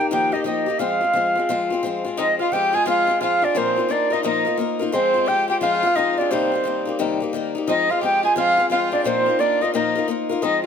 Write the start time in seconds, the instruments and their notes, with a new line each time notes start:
Already playing: steel-string acoustic guitar G4, flute G5, harp G5 A#5
0.00 steel-string acoustic guitar A#3 D#4
0.11 steel-string acoustic guitar D#3 F3 A#3 D#4 G4, flute G5, harp G5
0.32 steel-string acoustic guitar A#3 D#4 G4, flute D#5, harp D#5
0.44 steel-string acoustic guitar F3 A#3 D#4 G4, flute D#5, harp D#5
0.66 steel-string acoustic guitar A#3 D#4 G4
0.79 steel-string acoustic guitar F3 G#3 C4 F4, flute F5, harp F5
1.01 steel-string acoustic guitar G#3 C4 F4
1.13 steel-string acoustic guitar F3 G#3 C4 F4
1.35 steel-string acoustic guitar G#3 C4 F4
1.49 steel-string acoustic guitar F3 G#3 C4 F4
1.70 steel-string acoustic guitar G#3 C4 F4
1.83 steel-string acoustic guitar F3 G#3 C4 F4
2.04 steel-string acoustic guitar G#3 C4 F4
2.17 steel-string acoustic guitar F3 G#3 C4 F4, fiddle D#4, flute D#5, harp D#5
2.39 steel-string acoustic guitar G#3 C4 F4, fiddle F4, harp F5, flute F5
2.52 steel-string acoustic guitar F3 G#3 C4 F4, fiddle G4, flute G5, harp G5
2.73 steel-string acoustic guitar G#3 C4 F4, fiddle G#4, harp G#5, flute G#5
2.86 steel-string acoustic guitar F3 G#3 C4 F4, fiddle F4, harp F5, flute F5
3.07 steel-string acoustic guitar G#3 C4 F4
3.21 steel-string acoustic guitar F3 G#3 C4 F4, fiddle F4, harp F5, flute F5
3.42 steel-string acoustic guitar G#3 C4 F4, fiddle D4, harp D5, flute D5
3.55 steel-string acoustic guitar A#2 F3 A#3 D#4 F4 A#4, fiddle C4, harp C5, flute C5
3.68 harp C5
3.76 steel-string acoustic guitar A#3 D#4 F4 A#4, harp C5
3.89 steel-string acoustic guitar A#3 D#4 F4 A#4, fiddle D4, harp D5, flute D5
4.10 steel-string acoustic guitar A#3 D#4 F4 A#4, fiddle D#4, harp D#5, flute D#5
4.23 steel-string acoustic guitar A#2 F3 A#3 D#4 F4 A#4, fiddle D#4, harp D#5, flute D#5
4.45 steel-string acoustic guitar A#3 D#4 F4 A#4
4.57 steel-string acoustic guitar A#3 D#4 F4 A#4
4.79 steel-string acoustic guitar A#3 D#4 F4 A#4
4.92 steel-string acoustic guitar F3 G#3 C4 F4, fiddle C4, harp C5, flute C5
5.14 steel-string acoustic guitar C4 F4
5.26 steel-string acoustic guitar F3 G#3 C4 F4, fiddle G4, harp G5, flute G5
5.48 steel-string acoustic guitar G#3 C4 F4, fiddle G4, flute G5, harp G5
5.61 steel-string acoustic guitar F3 G#3 C4 F4, fiddle F4, flute F5, harp F5
5.74 harp F5
5.83 steel-string acoustic guitar G#3 C4 F4, harp F5
5.95 steel-string acoustic guitar F3 G#3 C4 F4, fiddle D#4, flute D#5, harp D#5
6.13 fiddle D#4
6.18 steel-string acoustic guitar G#3 C4 F4, fiddle D4, flute D5, harp D5
6.30 steel-string acoustic guitar C3 D#3 G3 A#3 D#4, fiddle C4, flute C5, harp C5
6.52 steel-string acoustic guitar G3 A#3 D#4
6.64 steel-string acoustic guitar D#3 G3 A#3 D#4
6.85 steel-string acoustic guitar G3 A#3 D#4
6.99 steel-string acoustic guitar C3 D#3 G3 A#3 D#4
7.20 steel-string acoustic guitar G3 A#3 D#4
7.33 steel-string acoustic guitar D#3 G3 A#3 D#4
7.55 steel-string acoustic guitar G3 A#3 D#4
7.67 steel-string acoustic guitar F3 G#3 C4 F4, fiddle D#4, harp D#5, flute D#5
7.89 steel-string acoustic guitar G#3 C4 F4, fiddle F4, harp F5, flute F5
8.01 steel-string acoustic guitar F3 G#3 C4 F4, fiddle G4, harp G5, flute G5
8.23 steel-string acoustic guitar G#3 C4 F4, fiddle G#4, flute G#5, harp G#5
8.36 steel-string acoustic guitar F3 G#3 C4 F4, fiddle F4, flute F5, harp F5
8.57 steel-string acoustic guitar G#3 C4 F4, harp G5
8.70 steel-string acoustic guitar F3 G#3 C4 F4, fiddle F4, flute F5, harp F5
8.92 steel-string acoustic guitar G#3 C4 F4, fiddle D4, harp D5, flute D5
9.04 steel-string acoustic guitar A#2 F3 A#3 D#4 F4 A#4, fiddle C4, flute C5, harp C5
9.26 steel-string acoustic guitar A#3 D#4 F4 A#4
9.39 steel-string acoustic guitar A#3 D#4 F4 A#4, fiddle D4, flute D5, harp D5
9.61 steel-string acoustic guitar A#3 D#4 F4 A#4, fiddle D#4, flute D#5, harp D#5
9.74 steel-string acoustic guitar A#2 F3 A#3 D#4 F4 A#4, fiddle D#4, flute D#5, harp D#5
9.95 steel-string acoustic guitar A#3 D#4 F4 A#4
10.08 steel-string acoustic guitar A#3 D#4 F4 A#4
10.29 steel-string acoustic guitar A#3 D#4 F4 A#4
10.42 steel-string acoustic guitar F3 G#3 C4 F4, fiddle D#4, flute D#5, harp D#5